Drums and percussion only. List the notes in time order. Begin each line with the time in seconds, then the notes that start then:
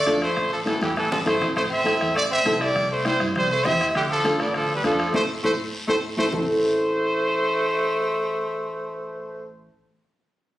0.07 bombo low, bombo rim, high conga, short guiro
0.21 bombo rim, short guiro
0.37 bombo low, bombo rim, high conga, long guiro
0.67 bombo rim, high conga, short guiro
0.81 bombo rim, high conga, short guiro
0.96 bombo rim, high conga, long guiro
1.12 low conga
1.26 bombo low, bombo rim, low conga, short guiro
1.41 bombo rim, low conga, short guiro
1.56 bombo low, bombo rim, high conga, long guiro
1.85 bombo rim, high conga, short guiro
2.01 bombo rim, short guiro
2.16 bombo rim, high conga, long guiro
2.46 bombo low, bombo rim, high conga, short guiro
2.61 bombo rim, short guiro
2.76 bombo low, bombo rim, high conga, long guiro
3.05 bombo rim, high conga, short guiro
3.20 bombo rim, short guiro
3.36 bombo rim, high conga, low conga, long guiro
3.65 bombo low, bombo rim, high conga, low conga, short guiro
3.81 bombo rim, short guiro
3.95 bombo low, bombo rim, high conga, long guiro
4.25 bombo rim, high conga, short guiro
4.40 bombo rim, short guiro
4.54 bombo rim, high conga, long guiro
4.84 bombo low, bombo rim, high conga, short guiro
4.99 bombo rim, short guiro
5.14 bombo low, high conga, long guiro
5.44 bombo low, high conga, long guiro
5.88 bombo low, high conga
6.17 bombo low, high conga, long guiro
6.32 bombo low, low conga, long guiro